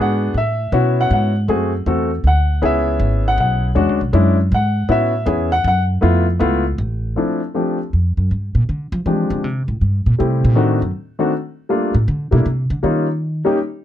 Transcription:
Already playing: G#2 B3 D4 F#4 G#4
0.02 F#5
0.34 A2 E5
0.72 B2 B3 C#4 E4 F#4
1.01 F#5
1.11 G#2 F#5
1.48 F#2 A3 C4 F#4 G#4
1.86 E2 A3 C4 F#4 A4
2.24 D2 F#5
2.62 C#2 B3 C#4 E4 G#4 E5
3.00 G#1
3.28 F#5
3.38 B1 F#5
3.75 E2 G#3 C#4 D4 F#4
3.89 D2
4.01 B1
4.13 F#2 G#3 C#4 D4 E4
4.52 G#2 F#5
4.89 A2 B3 C#4 E4 F#4 E5
5.26 E2 B3 C#4 E4 G#4
5.52 F#5
5.64 F#2 F#5
6.01 F2 A3 B3 E4 F4
6.39 C#2 A3 B3 E4 F4
6.78 A1
7.16 F3 A3 C4 D4 E4
7.54 F3 A3 C4 D4 G4
7.93 F2
8.17 F#2
8.31 G2
8.55 A#2
8.69 D3
8.92 F3
9.06 E3 F3 G#3 C4 D4 G4
9.30 D3
9.44 C3
9.68 A2
9.81 G2
10.06 A#2
10.19 C3 G3 A3 C4 E4 G4
10.45 A#2
10.55 A2 D#3 A3 C4 D4 F#4
10.82 F#2
11.19 D#3 A3 C4 D4 F#4
11.69 G3 A3 A#3 D4 F4
11.95 A2
12.08 D3
12.31 B2 G3 A3 A#3 D4 E4
12.46 C3
12.70 D3
12.83 D#3 G3 A#3 C#4 D#4 F4
13.45 G3 A#3 C#4 D#4 G4

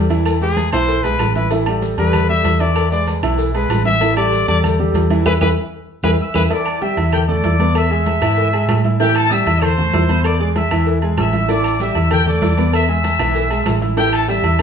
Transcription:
Already playing: E2
0.10 E3 E4 E5, cowbell, high conga, low agogo, maracas
0.26 cowbell, high conga, low agogo, claves, maracas
0.41 G#3 G#4 B4, maracas
0.57 cowbell, high conga, low timbale, low agogo, maracas
0.72 B1 E3 E4 C5 E5, cowbell, high conga, low agogo, claves, maracas
0.88 cowbell, high conga, maracas
1.03 B1 G#3 G#4 B4, high conga, low agogo, maracas
1.19 A1, cowbell, high conga, low timbale, low agogo, claves, maracas
1.35 E3 E4 B4 E5, cowbell, high conga, maracas
1.51 E3 E4 E5, cowbell, high conga, low agogo, maracas
1.66 G3 G4 A4, high conga, low agogo, claves
1.82 cowbell, high conga, low timbale, maracas
1.97 E2 G3 G4 A4 B4, cowbell, high conga, low agogo, maracas
2.13 cowbell, high conga, low conga, low agogo, claves, maracas
2.29 G3 G4 A4 E5, high conga
2.44 E2, cowbell, high conga, low timbale, low agogo, maracas
2.60 E3 E4 D5 E5, cowbell, high conga, low agogo, maracas
2.76 cowbell, high conga, low agogo, claves, maracas
2.92 G#3 G#4 B4 D5, high conga, maracas
3.07 cowbell, high conga, low timbale, low agogo, maracas
3.23 B1 E3 E4 E5, cowbell, high conga, low agogo, claves, maracas
3.38 cowbell, high conga, maracas
3.54 G#3 G#4 B4, high conga, low agogo, maracas
3.69 A1, cowbell, high conga, low timbale, low agogo, claves, maracas
3.85 E3 E4 E5, cowbell, high conga, maracas
4.01 E3 E4 E5, cowbell, high conga, low agogo, maracas
4.17 G3 G4 A4 D5, high conga, low agogo, claves
4.32 cowbell, high conga, low timbale, maracas
4.47 E2 G3 G4 A4 D5, cowbell, high conga, low agogo, maracas
4.63 cowbell, high conga, low conga, low agogo, claves, maracas
4.79 G3 G4 A4, high conga, low conga
4.94 E2, cowbell, high conga, low timbale, low agogo, maracas
5.10 E3 E4 E5, cowbell, high conga, low agogo, maracas
5.25 E2 E4 G#4 B4, cowbell, high conga, high timbale, claves, maracas
5.41 E2 E4 G#4 B4, cowbell, high conga, high timbale, claves, maracas
6.03 E2 E4 G#4 B4, cowbell, high conga, high timbale, claves, maracas
6.19 E5 E6
6.34 E2 E4 G#4 B4, cowbell, high conga, high timbale, claves, maracas
6.50 E3 E4 D5 E5 D6, cowbell, high conga, low agogo
6.66 high conga, low agogo, claves
6.81 G3 G4 E5 G5 E6, cowbell, high conga, low timbale
6.97 E2 E4 E5 E6, cowbell, high conga, low agogo
7.12 G4 G5, cowbell, high conga, low conga, low agogo, claves
7.28 A3 A4 D5 A5 D6, high conga, low conga
7.44 E2 E4 E5 E6, cowbell, high conga, low timbale, low agogo
7.59 B3 B4 B5, cowbell, high conga, low agogo
7.75 E5 E6, cowbell, high conga, low agogo, claves
7.91 G#3 G#4 E5 G#5 E6, high conga
8.06 cowbell, high conga, low timbale, low agogo
8.21 G#2 E3 E4 E5, cowbell, low agogo, claves
8.38 cowbell
8.53 G#3 G#4 G#5, low agogo
8.68 A2, cowbell, high conga, low timbale, low agogo, claves
8.84 E4 E5 E6, cowbell, high conga
9.00 E3 E4 G4 E5 G5, cowbell, low agogo
9.15 A4 A5, high conga, low agogo, claves
9.30 G3 G4 E5 G5 E6, cowbell, high conga, low timbale
9.46 E2 E4 E5 E6, cowbell, high conga, low agogo
9.62 C5 C6, cowbell, high conga, low conga, low agogo, claves
9.78 A3 A4 A5, high conga, low conga
9.93 E2 E4 E5 E6, cowbell, high conga, low timbale, low agogo
10.09 B3 B4 B5, cowbell, high conga, low agogo
10.24 D5 D6, cowbell, high conga, low agogo, claves
10.40 G#3 G#4 D5 G#5 D6, high conga
10.56 E5 E6, cowbell, high conga, low timbale, low agogo
10.71 E2 E3 E4 E5, cowbell, high conga, low agogo, claves
10.87 cowbell
11.02 G#3 G#4 G#5, high conga, low agogo
11.17 A1 E5 E6, cowbell, high conga, low timbale, low agogo, claves
11.33 E4 E5 E6, cowbell, high conga
11.49 E3 E4 D5 E5 D6, cowbell, high conga, low agogo, maracas
11.64 high conga, low agogo, claves, maracas
11.80 G3 G4 E5 G5 E6, cowbell, high conga, low timbale, maracas
11.95 E2 E4 E5 E6, cowbell, high conga, low agogo, maracas
12.11 G4 G5, cowbell, high conga, low conga, low agogo, claves, maracas
12.26 A3 A4 D5 A5 D6, high conga, low conga, maracas
12.41 E2 E4 E5 E6, cowbell, high conga, low timbale, low agogo, maracas
12.57 B3 B4 B5, cowbell, high conga, low agogo, maracas
12.73 E5 E6, cowbell, high conga, low agogo, claves, maracas
12.89 G#3 G#4 E5 G#5 E6, high conga
13.04 cowbell, high conga, low timbale, low agogo, maracas
13.19 B1 E3 E4 E5, cowbell, high conga, low agogo, claves, maracas
13.35 cowbell, high conga, maracas
13.50 G#3 G#4 G#5, low agogo, maracas
13.66 A1, cowbell, high conga, low timbale, low agogo, claves, maracas
13.82 E4 E5 E6, cowbell, high conga, maracas
13.97 E3 E4 G4 E5 G5, cowbell, high conga, low agogo, maracas
14.13 A4 A5, high conga, low agogo, claves, maracas
14.28 G3 G4 E5 G5 E6, cowbell, high conga, low timbale, maracas
14.43 E2 E4 E5 E6, cowbell, high conga, low agogo, maracas
14.59 low agogo

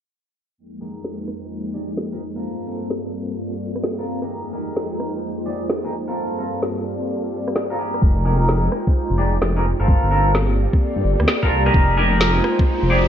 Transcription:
0.58 F2 G#3 A#3 D#4 F4 G5
0.72 C5
0.81 D#4 G4 G#4 A#4
1.04 snare
1.28 cross-stick
1.74 D#4 G4 G#4 D5
1.97 snare
2.12 D#4 G4 G#4 A#4
2.21 cross-stick
2.36 C4 F4 A4 A#4
2.44 G2 C4 F4 G4 A4
2.54 D5
2.67 C4 F4 A4 A#4
2.90 snare
3.76 cross-stick
3.84 snare
3.98 C4 F4 A4 A#4
4.22 D#4 G4 G#4 A#4, cross-stick
4.30 F2 G#3 D#4 F4 G5
4.53 D#4 G4 G#4 A#4
4.57 C5
4.77 snare
5.00 cross-stick
5.46 D#4 G4 G#4 D5
5.70 snare
5.84 D#4 G4 G#4 A#4
5.93 cross-stick
6.08 C4 F4 A4 A#4
6.16 G2 C4 F4 G4 A4
6.31 D5
6.39 C4 F4 A4 A#4
6.63 snare
7.48 cross-stick
7.56 snare
7.70 C4 F4 A4 A#4
7.79 D#4 G4 G#4 A#4
7.94 cross-stick
8.02 F1 G#3 D#4 F4 G5, kick
8.20 C5
8.25 D#4 G4 G#4 A#4
8.49 snare
8.72 cross-stick
8.87 kick
9.10 F1
9.18 D#4 G4 G#4 D5
9.42 F1, snare
9.56 D#4 G4 G#4 A#4
9.65 cross-stick
9.80 G1 C4 F4 A4 A#4
9.88 A#3 C4 F4 G4 A4, kick
10.04 G1
10.11 C4 F4 A4 A#4
10.26 D5
10.35 snare
10.73 kick
10.96 G2
11.04 G1
11.20 D2, cross-stick
11.28 snare
11.43 C4 F4 A4 A#4, kick
11.51 C2
11.66 D#4 G4 G#4 A#4, cross-stick
11.74 F1 G#3 D#4 F4 G5, kick, riser
11.93 G#4 C5
11.98 D#4 G4 A#4
12.21 snare
12.44 cross-stick
12.59 kick
12.83 F1
12.90 D#4 G4 G#4 D5

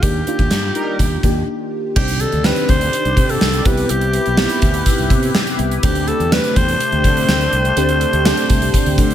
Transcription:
0.03 D#2 D#3 A#3 D4 D#4 G4, kick, closed hi-hat
0.27 A#3 D4 D#4 F4, closed hi-hat
0.39 D#2, kick
0.51 G2, snare, closed hi-hat
0.75 G3 D#4 A#4, closed hi-hat
0.99 D#2, kick, closed hi-hat
1.23 D#2 A#3 D4 D#4 G4, kick, closed hi-hat
1.96 C2 C3 D#3 C4 D4 D#4 G4 D5, kick, crash
2.08 closed hi-hat
2.20 A4, closed hi-hat
2.32 D2, closed hi-hat
2.44 C4 D4 D#4 G4 B4, snare
2.56 closed hi-hat
2.69 D2 C5, kick, closed hi-hat
2.81 closed hi-hat
2.93 closed hi-hat
3.05 C2, closed hi-hat
3.17 C3, kick, closed hi-hat
3.29 A4, closed hi-hat
3.41 C2, snare
3.53 closed hi-hat
3.65 C2 C3 B3 C4 E4 G4 B4, kick, closed hi-hat
3.77 closed hi-hat
3.89 C2 G4, closed hi-hat
4.01 closed hi-hat
4.13 closed hi-hat
4.26 B1, closed hi-hat
4.37 B3 C4 D#4 G4, snare
4.44 E4
4.49 closed hi-hat
4.62 D2, kick, closed hi-hat
4.74 closed hi-hat
4.86 kick, closed hi-hat
4.98 C2, closed hi-hat
5.10 C3, kick, closed hi-hat
5.23 closed hi-hat
5.35 snare
5.47 closed hi-hat
5.59 C2, closed hi-hat
5.71 closed hi-hat
5.83 D2 D3 A3 C4 D4 G4, kick, closed hi-hat
5.95 closed hi-hat
6.08 A4, closed hi-hat
6.20 E2, closed hi-hat
6.31 A3 C4 D4 G4 B4, snare, tambourine
6.44 closed hi-hat
6.56 E2 C5, kick, closed hi-hat
6.68 closed hi-hat
6.80 closed hi-hat
6.92 D2, closed hi-hat
7.04 D3, kick, closed hi-hat
7.17 closed hi-hat
7.28 D2, snare, tambourine
7.41 closed hi-hat
7.53 C2, closed hi-hat
7.65 closed hi-hat
7.77 D2 D3 A3 C4 D4 G4, closed hi-hat
7.89 closed hi-hat
8.01 closed hi-hat
8.13 D2, closed hi-hat
8.25 A3 C4 D4 G4, snare, tambourine
8.37 closed hi-hat
8.50 C2, kick, closed hi-hat
8.62 closed hi-hat
8.74 kick, closed hi-hat
8.86 D2, closed hi-hat
8.98 D3, kick, closed hi-hat
9.10 closed hi-hat

